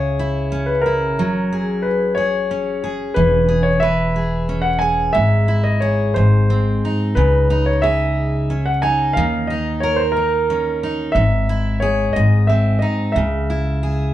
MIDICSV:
0, 0, Header, 1, 4, 480
1, 0, Start_track
1, 0, Key_signature, 4, "minor"
1, 0, Tempo, 665188
1, 860, Time_signature, 6, 3, 24, 8
1, 10202, End_track
2, 0, Start_track
2, 0, Title_t, "Grand piano"
2, 0, Program_c, 0, 0
2, 0, Note_on_c, 0, 73, 58
2, 478, Note_on_c, 0, 71, 63
2, 509, Note_off_c, 0, 73, 0
2, 588, Note_on_c, 0, 70, 64
2, 613, Note_off_c, 0, 71, 0
2, 1316, Note_on_c, 0, 71, 63
2, 1344, Note_off_c, 0, 70, 0
2, 1548, Note_off_c, 0, 71, 0
2, 1549, Note_on_c, 0, 73, 74
2, 2069, Note_off_c, 0, 73, 0
2, 2268, Note_on_c, 0, 71, 73
2, 2619, Note_on_c, 0, 73, 71
2, 2647, Note_off_c, 0, 71, 0
2, 2741, Note_on_c, 0, 76, 84
2, 2756, Note_off_c, 0, 73, 0
2, 3331, Note_on_c, 0, 78, 71
2, 3372, Note_off_c, 0, 76, 0
2, 3454, Note_on_c, 0, 80, 78
2, 3459, Note_off_c, 0, 78, 0
2, 3700, Note_on_c, 0, 76, 82
2, 3718, Note_off_c, 0, 80, 0
2, 4067, Note_on_c, 0, 75, 72
2, 4085, Note_off_c, 0, 76, 0
2, 4188, Note_on_c, 0, 73, 64
2, 4202, Note_off_c, 0, 75, 0
2, 4422, Note_off_c, 0, 73, 0
2, 4432, Note_on_c, 0, 72, 63
2, 4957, Note_off_c, 0, 72, 0
2, 5160, Note_on_c, 0, 71, 67
2, 5528, Note_on_c, 0, 73, 64
2, 5541, Note_off_c, 0, 71, 0
2, 5641, Note_on_c, 0, 76, 79
2, 5657, Note_off_c, 0, 73, 0
2, 6246, Note_on_c, 0, 78, 65
2, 6269, Note_off_c, 0, 76, 0
2, 6363, Note_off_c, 0, 78, 0
2, 6364, Note_on_c, 0, 80, 77
2, 6591, Note_on_c, 0, 77, 76
2, 6618, Note_off_c, 0, 80, 0
2, 6836, Note_on_c, 0, 75, 64
2, 6850, Note_off_c, 0, 77, 0
2, 7067, Note_off_c, 0, 75, 0
2, 7074, Note_on_c, 0, 73, 63
2, 7190, Note_on_c, 0, 72, 65
2, 7207, Note_off_c, 0, 73, 0
2, 7226, Note_off_c, 0, 72, 0
2, 7301, Note_on_c, 0, 70, 70
2, 7826, Note_off_c, 0, 70, 0
2, 8023, Note_on_c, 0, 76, 77
2, 8514, Note_on_c, 0, 73, 67
2, 8531, Note_off_c, 0, 76, 0
2, 8752, Note_on_c, 0, 75, 75
2, 8769, Note_off_c, 0, 73, 0
2, 9000, Note_on_c, 0, 76, 65
2, 9008, Note_off_c, 0, 75, 0
2, 9229, Note_on_c, 0, 75, 63
2, 9253, Note_off_c, 0, 76, 0
2, 9468, Note_on_c, 0, 76, 68
2, 9489, Note_off_c, 0, 75, 0
2, 10202, Note_off_c, 0, 76, 0
2, 10202, End_track
3, 0, Start_track
3, 0, Title_t, "Steel-string acoustic guitar"
3, 0, Program_c, 1, 25
3, 0, Note_on_c, 1, 49, 56
3, 0, Note_on_c, 1, 64, 48
3, 0, Note_on_c, 1, 68, 48
3, 131, Note_off_c, 1, 64, 0
3, 140, Note_on_c, 1, 64, 46
3, 374, Note_on_c, 1, 61, 45
3, 611, Note_off_c, 1, 64, 0
3, 619, Note_on_c, 1, 64, 49
3, 860, Note_off_c, 1, 49, 0
3, 860, Note_on_c, 1, 54, 61
3, 907, Note_off_c, 1, 64, 0
3, 1101, Note_off_c, 1, 68, 0
3, 1101, Note_on_c, 1, 68, 47
3, 1566, Note_off_c, 1, 68, 0
3, 1569, Note_on_c, 1, 68, 46
3, 1807, Note_off_c, 1, 61, 0
3, 1810, Note_on_c, 1, 61, 47
3, 2044, Note_off_c, 1, 68, 0
3, 2047, Note_on_c, 1, 68, 48
3, 2282, Note_on_c, 1, 52, 59
3, 2289, Note_off_c, 1, 54, 0
3, 2512, Note_off_c, 1, 68, 0
3, 2515, Note_on_c, 1, 68, 51
3, 2761, Note_on_c, 1, 71, 54
3, 2782, Note_off_c, 1, 61, 0
3, 2997, Note_off_c, 1, 68, 0
3, 3000, Note_on_c, 1, 68, 47
3, 3239, Note_on_c, 1, 61, 46
3, 3472, Note_off_c, 1, 68, 0
3, 3475, Note_on_c, 1, 68, 49
3, 3713, Note_on_c, 1, 44, 58
3, 3723, Note_off_c, 1, 52, 0
3, 3771, Note_off_c, 1, 61, 0
3, 3772, Note_off_c, 1, 71, 0
3, 3952, Note_off_c, 1, 68, 0
3, 3955, Note_on_c, 1, 64, 50
3, 4199, Note_on_c, 1, 68, 49
3, 4436, Note_off_c, 1, 44, 0
3, 4445, Note_on_c, 1, 44, 59
3, 4493, Note_off_c, 1, 64, 0
3, 4690, Note_on_c, 1, 60, 43
3, 4941, Note_on_c, 1, 63, 47
3, 5171, Note_off_c, 1, 44, 0
3, 5174, Note_on_c, 1, 49, 60
3, 5223, Note_off_c, 1, 60, 0
3, 5411, Note_off_c, 1, 63, 0
3, 5414, Note_on_c, 1, 63, 53
3, 5650, Note_off_c, 1, 68, 0
3, 5653, Note_on_c, 1, 68, 50
3, 6133, Note_on_c, 1, 61, 46
3, 6155, Note_off_c, 1, 63, 0
3, 6371, Note_on_c, 1, 63, 49
3, 6616, Note_off_c, 1, 49, 0
3, 6617, Note_on_c, 1, 51, 63
3, 6661, Note_off_c, 1, 63, 0
3, 6663, Note_off_c, 1, 68, 0
3, 6858, Note_on_c, 1, 63, 50
3, 6880, Note_off_c, 1, 61, 0
3, 7096, Note_on_c, 1, 70, 56
3, 7327, Note_off_c, 1, 63, 0
3, 7336, Note_on_c, 1, 63, 45
3, 7577, Note_on_c, 1, 61, 45
3, 7809, Note_off_c, 1, 63, 0
3, 7817, Note_on_c, 1, 63, 48
3, 8050, Note_off_c, 1, 51, 0
3, 8050, Note_on_c, 1, 44, 66
3, 8099, Note_off_c, 1, 70, 0
3, 8101, Note_off_c, 1, 61, 0
3, 8102, Note_off_c, 1, 63, 0
3, 8293, Note_on_c, 1, 64, 51
3, 8531, Note_on_c, 1, 68, 51
3, 8769, Note_off_c, 1, 44, 0
3, 8777, Note_on_c, 1, 44, 61
3, 8819, Note_off_c, 1, 64, 0
3, 9016, Note_on_c, 1, 60, 42
3, 9252, Note_on_c, 1, 63, 49
3, 9496, Note_on_c, 1, 49, 60
3, 9541, Note_off_c, 1, 63, 0
3, 9543, Note_off_c, 1, 60, 0
3, 9544, Note_off_c, 1, 44, 0
3, 9741, Note_on_c, 1, 64, 53
3, 9977, Note_off_c, 1, 68, 0
3, 9980, Note_on_c, 1, 68, 50
3, 10202, Note_off_c, 1, 49, 0
3, 10202, Note_off_c, 1, 64, 0
3, 10202, Note_off_c, 1, 68, 0
3, 10202, End_track
4, 0, Start_track
4, 0, Title_t, "Upright bass"
4, 0, Program_c, 2, 32
4, 0, Note_on_c, 2, 37, 68
4, 854, Note_off_c, 2, 37, 0
4, 854, Note_on_c, 2, 30, 74
4, 2257, Note_off_c, 2, 30, 0
4, 2287, Note_on_c, 2, 28, 76
4, 3697, Note_off_c, 2, 28, 0
4, 3724, Note_on_c, 2, 32, 67
4, 4420, Note_off_c, 2, 32, 0
4, 4449, Note_on_c, 2, 32, 72
4, 4905, Note_off_c, 2, 32, 0
4, 5168, Note_on_c, 2, 37, 81
4, 6585, Note_off_c, 2, 37, 0
4, 6614, Note_on_c, 2, 39, 76
4, 8020, Note_off_c, 2, 39, 0
4, 8045, Note_on_c, 2, 32, 90
4, 8738, Note_off_c, 2, 32, 0
4, 8775, Note_on_c, 2, 32, 73
4, 9224, Note_off_c, 2, 32, 0
4, 9492, Note_on_c, 2, 37, 80
4, 10202, Note_off_c, 2, 37, 0
4, 10202, End_track
0, 0, End_of_file